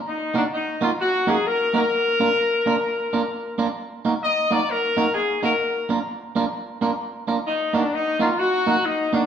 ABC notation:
X:1
M:4/4
L:1/16
Q:"Swing" 1/4=130
K:Ebm
V:1 name="Horn section"
E2 =D2 E2 F2 G2 A2 B2 B2- | B12- B2 z2 | z4 e2 =d2 B4 A2 B2- | B2 z12 z2 |
E2 =D2 E2 F2 G4 E2 D2 |]
V:2 name="Clean electric guitar"
z2 [B,EGB] z3 [B,EGB] z3 [B,EGB] z3 [B,EGB] z | z2 [B,=DFB] z3 [B,DFB] z3 [B,DFB] z3 [B,DFB] z | z2 [B,EGB] z3 [B,EGB] z3 [B,EGB] z3 [B,EGB] z | z2 [B,=DFB] z3 [B,DFB] z3 [B,DFB] z3 [B,DFB] z |
z2 [B,EGB] z3 [B,EGB] z3 [B,EGB] z3 [B,EGB] z |]